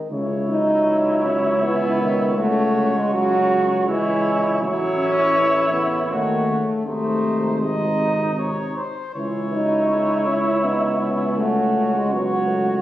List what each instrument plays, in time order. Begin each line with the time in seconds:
Already playing: trombone D#3
0.11 tuba C#2, trombone C#3, flugelhorn E4, cornet C#5
0.49 trombone F#3, french horn D#4
1.24 french horn C#4
1.63 trombone E3, french horn B3
2.01 trombone D#3
2.38 trombone C#3, french horn A3, flugelhorn F#4, cornet C#5
2.95 french horn G#3
3.13 french horn F#3, flugelhorn F#4, cornet C#5
3.88 french horn E3, trombone G#3, flugelhorn E4, cornet C#5
4.62 tuba A1, trombone F#3, flugelhorn E4, cornet C#5
4.99 french horn C#4
5.35 trombone E3
5.73 trombone C#3, french horn B3
6.10 tuba D#2, trombone D#3, french horn A3, flugelhorn F#4, cornet C#5
6.48 trombone C#3
6.86 tuba G#1, trombone C3, french horn A3, flugelhorn D#4, cornet C5
7.62 french horn G#3, flugelhorn D#4, cornet D#5
8.39 cornet C#5
8.77 cornet C5
9.15 tuba C#2, trombone E3, flugelhorn E4, cornet C#5
9.53 trombone F#3, french horn D#4
9.91 trombone G#3
10.27 french horn C#4, trombone E4
10.63 french horn B3, trombone D#4
11.00 trombone C#4
11.37 french horn A3, flugelhorn F#4, cornet C#5
11.95 french horn G#3
12.12 french horn F#3, trombone B3, flugelhorn F#4, cornet C#5
12.49 trombone A3